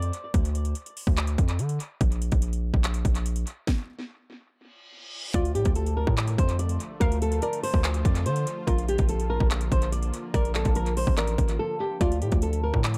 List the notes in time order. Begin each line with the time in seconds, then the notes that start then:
Already playing: F2 D5
0.02 closed hi-hat
0.13 closed hi-hat
0.34 D2, kick, closed hi-hat
0.45 closed hi-hat
0.55 closed hi-hat
0.65 closed hi-hat
0.75 closed hi-hat
0.86 closed hi-hat
0.97 open hi-hat
1.07 D2, kick
1.17 clap, closed hi-hat
1.27 closed hi-hat
1.38 F2, kick, closed hi-hat
1.48 closed hi-hat
1.59 D3, closed hi-hat
1.69 closed hi-hat
1.80 closed hi-hat
2.01 A#1, kick, closed hi-hat
2.12 closed hi-hat
2.22 closed hi-hat
2.32 A#1, kick, closed hi-hat
2.42 closed hi-hat
2.53 closed hi-hat
2.74 A#1, kick
2.84 clap, closed hi-hat
2.94 closed hi-hat
3.05 A#1, kick, closed hi-hat
3.15 closed hi-hat
3.26 closed hi-hat
3.36 closed hi-hat
3.47 closed hi-hat
3.67 kick, snare
4.51 reverse cymbal
5.34 D2 D3 F3 A3 F4 D5, kick, closed hi-hat, impact
5.45 closed hi-hat
5.55 A2 G4, closed hi-hat
5.65 D2, kick, closed hi-hat
5.75 A4, closed hi-hat
5.86 closed hi-hat
5.97 A#4
6.07 A2, kick
6.17 clap, closed hi-hat
6.28 closed hi-hat
6.38 F2 C5, kick, closed hi-hat
6.49 closed hi-hat
6.59 D5, closed hi-hat
6.69 closed hi-hat
6.80 closed hi-hat
7.00 D2 A#4 F5, kick, closed hi-hat
7.12 closed hi-hat
7.22 A4, closed hi-hat
7.32 closed hi-hat
7.42 A#4 D5, closed hi-hat
7.53 closed hi-hat
7.63 C5, open hi-hat
7.74 D2, kick
7.84 C5, clap, closed hi-hat
7.94 closed hi-hat
8.05 F2 D5, kick, closed hi-hat
8.15 closed hi-hat
8.26 D3 C5, closed hi-hat
8.36 closed hi-hat
8.47 closed hi-hat
8.67 A#1 A#3 F4 A#4, kick, closed hi-hat
8.78 closed hi-hat
8.88 G4, closed hi-hat
8.98 A#1, kick, closed hi-hat
9.09 A4, closed hi-hat
9.20 closed hi-hat
9.30 A#4
9.40 A#1, kick
9.51 clap, closed hi-hat
9.61 closed hi-hat
9.72 A#1 C5, kick, closed hi-hat
9.82 closed hi-hat
9.92 D5, closed hi-hat
10.03 closed hi-hat
10.14 closed hi-hat
10.34 A#1 A#4 D5, kick, closed hi-hat
10.45 closed hi-hat
10.55 A4, clap, closed hi-hat
10.65 A#1, kick, closed hi-hat
10.75 A#4, closed hi-hat
10.86 closed hi-hat
10.97 C5, open hi-hat
11.07 A1, kick
11.17 A#4 D5, clap, closed hi-hat
11.27 closed hi-hat
11.38 A1, kick, closed hi-hat
11.48 closed hi-hat
11.59 A4
11.80 G4
12.01 D2 A3 F4 D5, kick, closed hi-hat
12.12 closed hi-hat
12.22 A2 G4, closed hi-hat
12.32 D2, kick, closed hi-hat
12.42 A4, closed hi-hat
12.53 closed hi-hat
12.63 A#4
12.74 A2, kick
12.84 clap, closed hi-hat
12.94 closed hi-hat